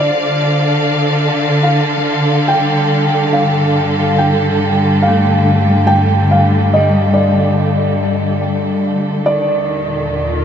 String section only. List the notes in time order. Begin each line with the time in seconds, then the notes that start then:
Already playing: D3 A4 D5 F5
2.52 G3
9.29 D#3
9.80 A#2
10.24 F4